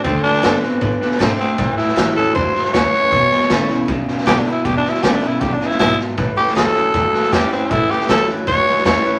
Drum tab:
HH |----p-------p---|----p-------p---|----p-------p---|----p-------p---|
SD |o-ooo-o-o-ooo-o-|o-ooo-o-o-ooo-o-|o-ooo-o-o-ooo-o-|o-ooo-o-o-ooo-o-|
BD |o---o---o---o---|o---o---o---o---|o---o---o---o---|o---o---o---o---|

HH |----p-------p---|----p-------p---|
SD |o-ooo-o-o-ooo-o-|o-ooo-o-o-ooo-o-|
BD |o---o---o---o---|o---o---o---o---|